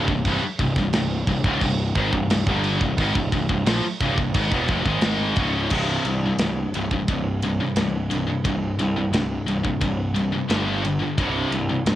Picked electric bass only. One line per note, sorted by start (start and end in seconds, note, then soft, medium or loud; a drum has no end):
0.07 0.24 C1 medium
0.24 0.41 C1 medium
0.42 muted picked electric bass stroke soft
0.59 0.75 C1 medium
0.76 0.92 C1 medium
0.93 1.25 C1 medium
1.27 1.43 C1 medium
1.44 1.60 C#1 loud
1.61 1.93 C1 medium
1.95 2.12 G#1 loud
2.13 2.29 C1 medium
2.30 2.46 C1 medium
2.46 2.78 G1 medium
2.81 2.97 C1 medium
2.97 3.14 G#1 medium
3.15 3.31 C1 medium
3.32 3.48 C1 medium
3.49 3.65 C1 medium
3.66 3.82 A#1 medium
3.83 muted picked electric bass stroke soft
4.01 4.17 C1 medium
4.17 4.33 C1 medium
4.34 4.50 G#1 medium
4.52 4.68 E1 loud
4.69 4.84 F1 loud
4.85 5.33 G#1 medium
5.37 5.69 C#1 medium
5.71 5.96 C1 medium
6.05 6.31 C2 medium
6.39 6.65 C1 medium
6.74 6.99 C1 medium
7.07 7.58 C1 medium
7.76 8.27 C1 medium
8.45 8.70 C1 medium
8.79 9.04 C2 medium
9.12 9.38 C1 medium
9.47 9.72 C1 medium
9.81 10.32 C1 medium
10.49 11.00 G1 medium
11.18 11.43 C1 medium
11.51 11.77 C2 medium
11.86 11.95 C1 medium